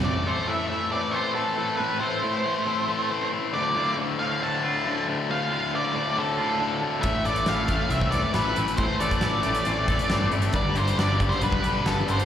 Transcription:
<<
  \new Staff \with { instrumentName = "Lead electric guitar" } { \time 4/4 \key a \minor \tempo 4 = 137 d''8 c''8 e''8 e''8 d''8 c''8 a'4 | b'8 c''2. r8 | d''4 r8 f''8 a''4. r8 | f''4 d''4 a'4. r8 |
e''8 d''8 f''8 f''8 e''8 d''8 b'4 | c''8 d''2. r8 | d''8 c''8 \tuplet 3/2 { d''8. r16 c''8 } b'4 a'8 c''8 | }
  \new Staff \with { instrumentName = "Clean electric guitar" } { \time 4/4 \key a \minor a,8 a'8 e'8 a8 c'8 a'8 c'8 e'8 | a,8 a'8 e'8 a8 c'8 a'8 c'8 e'8 | d,8 f'8 a8 a,8 d8 f'8 d8 a8 | d,8 f'8 a8 a,8 d8 f'8 d8 a8 |
a,8 a'8 e'8 a8 c'8 a'8 c'8 e'8 | a,8 a'8 e'8 a8 c'8 a'8 c'8 e'8 | g,8 g'8 d'8 g8 b8 g'8 b8 d'8 | }
  \new Staff \with { instrumentName = "Distorted electric guitar" } { \clef bass \time 4/4 \key a \minor <a, e a>8 <a, e a>8 <a, e a>8 <a, e a>8 <a, e a>8 <a, e a>8 <a, e a>8 <a, e a>8 | <a, e a>8 <a, e a>8 <a, e a>8 <a, e a>8 <a, e a>8 <a, e a>8 <a, e a>8 <a, e a>8 | <d, a, d>8 <d, a, d>8 <d, a, d>8 <d, a, d>8 <d, a, d>8 <d, a, d>8 <d, a, d>8 <d, a, d>8 | <d, a, d>8 <d, a, d>8 <d, a, d>8 <d, a, d>8 <d, a, d>8 <d, a, d>8 <d, a, d>8 <d, a, d>8 |
<a, e a>8 <a, e a>8 <a, e a>8 <a, e a>8 <a, e a>8 <a, e a>8 <a, e a>8 <a, e a>8 | <a, e a>8 <a, e a>8 <a, e a>8 <a, e a>8 <a, e a>8 <a, e a>8 <a, e a>8 <a, e a>8 | <g, d g>8 <g, d g>8 <g, d g>8 <g, d g>8 <g, d g>8 <g, d g>8 <g, d g>8 <g, d g>8 | }
  \new Staff \with { instrumentName = "Picked electric bass" } { \clef bass \time 4/4 \key a \minor r1 | r1 | r1 | r1 |
a,,8 a,,8 a,,4 c,4 a,,8 a,,8 | a,,8 a,,8 a,,8 a,,8 a,,4 g,8 g,,8 | g,,8 g,,8 g,,4 b,,4 g,,8 g,,8 | }
  \new DrumStaff \with { instrumentName = "Drums" } \drummode { \time 4/4 r4 r4 r4 r4 | r4 r4 r4 r4 | r4 r4 r4 r4 | r4 r4 r4 r4 |
<hh bd>8 hh16 hh16 <hh sn>8 <hh bd>8 hh16 bd16 hh8 <hh sn>8 hh16 hh16 | <hh bd>8 hh16 <hh bd>16 <hh sn>8 hh16 <hh sn>16 hh8 <hh bd>16 hh16 <hh sn>8 hh16 hh16 | <hh bd>8 hh16 hh16 <hh sn>8 <hh bd>16 sn16 hh16 bd16 hh8 <hh sn>8 hh16 hh16 | }
>>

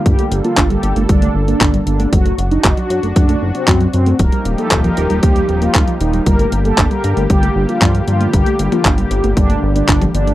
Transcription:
<<
  \new Staff \with { instrumentName = "Analog polysynth" } { \time 4/4 \key g \minor \tempo 4 = 116 g'8. f'8 g'8. d'8. d'8. d'8 | fis'8. ees'8 fis'8. d'8. c'8. c'8 | bes'8. a'8 bes'8. g'8. f'8. ees'8 | bes'8. a'8 bes'8. g'8. f'8. f'8 |
g'8. f'8 g'8. d'8. d'8. d'8 | }
  \new Staff \with { instrumentName = "Analog synth pad" } { \time 4/4 \key g \minor << { <d bes a'>1 | <d' fis'>1 | <f ees' g'>1 | <d g'>1~ |
<d g'>1 | } \\ { g1 | r1 | <g bes>1~ | <g bes>1~ |
<g bes>1 | } >> }
  \new Staff \with { instrumentName = "Synth arpeggio sound" } { \time 4/4 \key g \minor g16 a16 r16 bes16 d'16 g16 r16 a16 g16 a16 r16 bes16 d'16 g16 r16 a16 | fis16 a16 r16 d'16 fis'16 fis16 r16 a16 fis16 a16 r16 d'16 fis'16 fis16 r16 a16 | f16 g16 r16 bes16 ees'16 f16 r16 g16 f16 g16 r16 bes16 ees'16 f16 r16 g16 | g16 a16 r16 bes16 d'16 g16 r16 a16 g16 a16 r16 bes16 d'16 g16 r16 a16 |
g16 a16 r16 bes16 d'16 g16 r16 a16 g16 a16 r16 bes16 d'16 g16 r16 a16 | }
  \new Staff \with { instrumentName = "Analog synth bass" } { \clef bass \time 4/4 \key g \minor g,,16 r16 g,,16 r16 g,,8 g,,16 g,,16 g,,8 g,,8 g,,8 g,,8 | fis,,8 fis,,8 fis,,16 r16 fis,16 fis,,16 fis,,8 fis,,16 r16 fis,8 fis,8 | ees,,16 r16 ees,,16 r16 ees,,8 ees,,16 ees,,16 ees,,8 ees,,8 ees,,16 r16 ees,,8 | g,,8 g,,8 g,,16 r16 g,16 g,,16 g,,8 g,,16 r16 g,8 g,8 |
g,,16 r16 g,,16 r16 g,,8 g,,16 g,,16 g,,8 g,,8 g,,8 g,,8 | }
  \new DrumStaff \with { instrumentName = "Drums" } \drummode { \time 4/4 <hh bd>16 hh16 hh16 hh16 <hc hh bd>16 hh16 hh16 hh16 <hh bd>16 hh8 hh16 <hc hh bd>16 hh16 hh16 hh16 | <hh bd>16 hh16 hh16 hh16 <hc hh bd>16 hh16 hh16 hh16 <hh bd>16 hh8 hh16 <hc hh bd>16 hh16 hh16 hh16 | <hh bd>16 hh16 hh16 hh16 <hc hh bd>16 hh16 hh16 hh16 <hh bd>16 hh16 hh16 hh16 <hc hh bd>16 hh16 hh16 hh16 | <hh bd>16 hh16 hh16 hh16 <hc hh bd>16 hh16 hh16 hh16 <hh bd>16 hh8 hh16 <hc hh bd tommh>16 hh16 hh16 hh16 |
<hh bd>16 hh16 hh16 <hh tommh>16 <hc hh bd>16 hh16 hh16 hh16 <hh bd>16 hh8 hh16 <hc hh bd>16 <hh tommh>16 hh16 hh16 | }
>>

